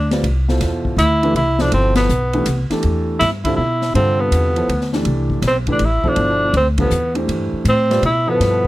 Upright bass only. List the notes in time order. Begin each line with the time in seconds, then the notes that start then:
Already playing: D2
0.23 C2
0.61 E2
0.97 D2
1.34 C2
1.72 G1
2.09 B1
2.46 C2
2.70 muted upright bass stroke
2.84 E2
3.21 G2
3.58 B2
3.94 G2
4.31 E2
4.68 D2
5.05 C2
5.42 B1
5.79 A1
6.04 muted upright bass stroke
6.17 G1
6.53 D2
6.90 E2
7.28 G2
7.53 muted upright bass stroke
7.65 A2
8.02 B2
8.40 G2